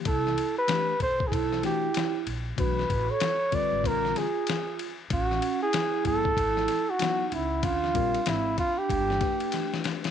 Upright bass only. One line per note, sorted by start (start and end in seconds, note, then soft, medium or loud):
0.06 0.33 C2 medium
1.00 1.28 B1 medium
1.32 1.60 B1 medium
2.26 2.54 A#1 medium
2.58 2.86 B1 medium
2.90 3.07 A1 medium
3.73 3.85 G#1 medium
3.85 4.12 A#1 loud
5.11 5.38 A1 loud
6.05 6.33 G#1 medium
6.37 6.65 G#1 medium
7.32 7.60 C#2 medium
7.63 7.91 D2 medium
7.95 8.13 A#1 loud
8.27 8.54 G#1 medium
8.90 9.17 G1 medium